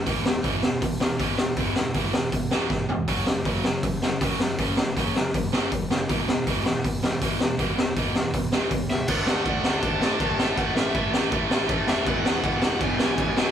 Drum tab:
CC |--------|--------|--------|--------|
HH |o-o-o-o-|o-o-o---|o-o-o-o-|o-o-o-o-|
SD |-o-o-o-o|-o-o-oo-|-o-o-o-o|-o-o-o-o|
FT |--------|-------o|--------|--------|
BD |o-o-o-o-|o-o-o-o-|o-o-o-o-|o-o-o-o-|

CC |--------|--------|x-x-x-x-|x-x-x-x-|
HH |o-o-o-o-|o-o-o-o-|--------|--------|
SD |-o-o-o-o|-o-o-o-o|-o-o-o-o|-o-o-o-o|
FT |--------|--------|--------|--------|
BD |o-o-o-o-|o-o-o-o-|o-o-o-o-|o-o-o-o-|

CC |x-x-x-x-|
HH |--------|
SD |-o-o-o-o|
FT |--------|
BD |o-o-o-o-|